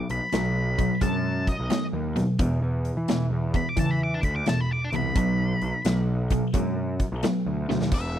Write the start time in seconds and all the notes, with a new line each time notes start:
Already playing: B2 F#3
0.10 B1 B5, closed hi-hat
0.32 B1 B2 F#3, snare, closed hi-hat
0.78 B2 F#3, kick, closed hi-hat
1.01 F#2 B2 G#3 A5, kick, closed hi-hat
1.47 D#5, kick, closed hi-hat
1.60 B1
1.70 B2 F#3, snare, closed hi-hat
1.93 D#2
2.16 B2 F#3, snare, closed hi-hat
2.39 E2 B2, kick, closed hi-hat
2.62 E2
2.85 closed hi-hat
2.97 E3
3.08 E2 B2, snare, closed hi-hat
3.31 E2
3.54 E2 B2 B5, kick, closed hi-hat
3.69 D6
3.77 E2 C#3 E3 A5, kick, closed hi-hat
3.91 B5
4.04 D6
4.15 A5
4.23 D2 B5, kick, closed hi-hat
4.36 D6
4.46 E2 B2 A5, snare, closed hi-hat
4.60 B5
4.73 D6
4.84 A5
4.92 C2 E2 B2 B5, closed hi-hat
5.15 B1 B2 F#3, kick, closed hi-hat
5.61 B1, closed hi-hat
5.85 B1 B2 F#3, snare, closed hi-hat
6.30 B2 F#3, kick, closed hi-hat
6.54 F#2 B2 G#3, kick, closed hi-hat
7.00 kick, closed hi-hat
7.12 B1
7.23 B2 F#3, snare, closed hi-hat
7.46 D2
7.69 D2 B2 F#3, snare
7.81 D#2, snare
7.91 E1 E5, kick, crash